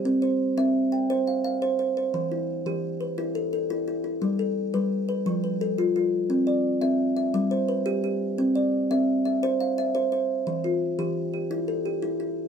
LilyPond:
\new Staff \with { instrumentName = "Kalimba" } { \time 12/8 \key c \major \tempo 4. = 115 << { g'8 c''4 e''4 g''4 f''8 f''4 c''8 c''8~ | c''8 e'4 g'4 b'4 a'8 a'4 e'8 e'8~ | e'8 a'4 b'4 b'4 b'8 a'4 f'4~ | f'8 d''4 e''4 e''4 c''8 b'4 g'4~ |
g'8 d''4 e''4 e''4 f''8 e''4 c''4~ | c''8 f'4 g'4 g'4 a'8 g'4 e'4 | } \\ { c'4 r8 c'4 r8 c''4 r8 c''4 r8 | e4 r8 e4 r8 e'4 r8 e'4 r8 | g4 r8 g4 r8 f4 r8 f'4 r8 | c'4 r8 c'4 r8 g4 r8 g'4 r8 |
c'4 r8 c'4 r8 c''4 r8 c''4 r8 | e4 r8 e4 r8 e'4 r8 e'4 r8 | } >> }